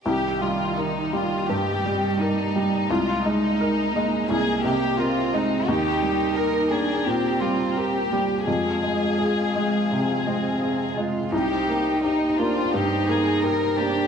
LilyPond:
<<
  \new Staff \with { instrumentName = "String section" } { \time 4/4 \key c \minor \tempo 4 = 86 << { <bes ees''>1~ | <bes ees''>1 | <bes bes'>1 | <c' f''>1 |
<bes c''>1 | } \\ { g'1 | aes1 | g''1 | aes'1 |
g''1 | } >> }
  \new Staff \with { instrumentName = "Violin section" } { \time 4/4 \key c \minor g'8 f'8 ees'8 f'8 g'4 ees'4 | f'8 ees'4. aes'8 g'8 f'8 ees'8 | g'4 bes'8 aes'8 g'8 f'8 g'4 | aes'2.~ aes'8 r8 |
g'4 ees'8 f'8 g'8 aes'8 bes'8 g'8 | }
  \new Staff \with { instrumentName = "Cello" } { \time 4/4 \key c \minor ees2 g2 | aes4. bes4. c'4 | ees'4. d'8 c'4. bes8 | aes2~ aes8 c'4 f'8 |
ees'4. d'8 ees'4. d'8 | }
  \new Staff \with { instrumentName = "Felt piano" } { \clef bass \time 4/4 \key c \minor c,8 g8 bes'8 g8 g,8 g8 bes'8 g8 | c,8 aes8 bes'8 aes8 c,8 c8 bes'8 aes8 | ees,8 g8 bes'8 bes8 bes,8 g8 bes'8 g8 | f,8 aes8 aes'8 aes8 c8 aes8 aes'8 aes8 |
c,8 bes8 g'8 bes8 g,8 bes8 g'8 bes8 | }
>>